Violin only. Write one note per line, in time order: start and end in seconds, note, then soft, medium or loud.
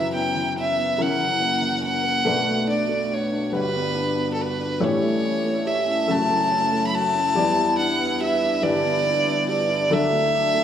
0.00 0.10 E5 medium
0.15 0.53 G5 medium
0.59 1.03 E5 medium
1.02 1.84 F#5 medium
1.85 2.65 F#5 medium
2.70 3.15 D5 medium
3.13 3.54 C#5 medium
3.58 4.30 B4 medium
4.34 4.43 A4 medium
4.41 4.85 B4 medium
4.84 5.68 C#5 medium
5.67 6.13 E5 medium
6.11 6.86 A5 medium
6.87 6.96 B5 medium
6.94 7.78 A5 medium
7.79 8.18 F#5 medium
8.23 8.64 E5 medium
8.63 9.48 D5 medium
9.50 9.95 D5 medium
9.93 10.64 E5 loud